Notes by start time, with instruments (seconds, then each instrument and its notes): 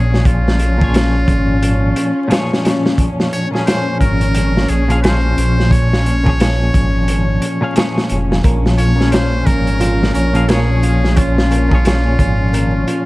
Already playing: detuned saw bass A#1, clean electric guitar A#2 F3 G#4 C#5, string section C#4, synth drone C#4, muted trumpet G#4
0.14 snare
0.25 muted trumpet F4, kick, closed hi-hat
0.48 snare
0.59 closed hi-hat
0.78 clean electric guitar A#2 F3, kick
0.82 clean electric guitar G#4 C#5
0.94 snare, closed hi-hat
1.28 detuned saw bass G#1, kick, closed hi-hat
1.63 closed hi-hat
1.96 closed hi-hat
2.28 clean electric guitar A#2 F3, closed hi-hat
2.32 clean electric guitar G#4 C#5, snare
2.53 snare
2.65 snare, closed hi-hat
2.86 snare
2.98 kick, closed hi-hat
3.20 snare
3.33 muted trumpet C#5, closed hi-hat
3.51 clean electric guitar A#2 F3 G#4
3.55 clean electric guitar C#4, snare
3.66 muted trumpet C5, snare, closed hi-hat
4.00 detuned saw bass G#1, muted trumpet A#4, kick, closed hi-hat
4.21 closed hi-hat
4.35 closed hi-hat
4.57 snare
4.68 detuned saw bass A#1, muted trumpet G#4, closed hi-hat
4.88 clean electric guitar A#2 F3 G#4 F5, closed hi-hat
5.00 clean electric guitar A#2 F3 G#4, muted trumpet C5, closed hi-hat
5.05 clean electric guitar C#4, snare
5.38 detuned saw bass A#1, closed hi-hat
5.60 snare
5.71 muted trumpet C#5, kick, closed hi-hat
5.93 snare
6.06 closed hi-hat
6.24 clean electric guitar A#2 F3, kick
6.28 clean electric guitar G#4 C#5
6.40 snare, closed hi-hat
6.74 detuned saw bass G#1, kick, closed hi-hat
7.08 closed hi-hat
7.42 closed hi-hat
7.61 clean electric guitar A#2 F3 G#4 F5
7.73 clean electric guitar A#2 F3 G#4, closed hi-hat
7.78 clean electric guitar C#5, snare
7.98 snare
8.09 detuned saw bass F1, closed hi-hat
8.32 snare
8.44 detuned saw bass A#1, nylon-string guitar A#3, string section C#4, kick, closed hi-hat
8.66 snare
8.78 nylon-string guitar F4, muted trumpet C#5, closed hi-hat
8.96 clean electric guitar A#2 F3 G#4
9.01 clean electric guitar C#4, snare
9.12 nylon-string guitar C#4, muted trumpet C5, snare, closed hi-hat
9.46 detuned saw bass G#1, nylon-string guitar A#3, muted trumpet A#4, kick, closed hi-hat
9.67 closed hi-hat
9.80 nylon-string guitar F4, closed hi-hat
10.03 snare
10.14 detuned saw bass A#1, nylon-string guitar C#4, muted trumpet A#4, closed hi-hat
10.33 clean electric guitar A#2 F3 G#4 F5, closed hi-hat
10.46 clean electric guitar A#2 F3 G#4, nylon-string guitar A#3, muted trumpet G#4, snare, closed hi-hat
10.52 clean electric guitar C#5
10.83 nylon-string guitar F4, closed hi-hat
11.04 snare
11.16 nylon-string guitar C#4, muted trumpet F4, kick, closed hi-hat
11.38 snare
11.51 nylon-string guitar A#3, closed hi-hat
11.69 clean electric guitar A#2 F3 G#4, kick
11.75 clean electric guitar C#5
11.85 nylon-string guitar F4, snare, closed hi-hat
12.19 detuned saw bass G#1, nylon-string guitar C#4, kick, closed hi-hat
12.53 nylon-string guitar A#3, closed hi-hat
12.87 nylon-string guitar F4, closed hi-hat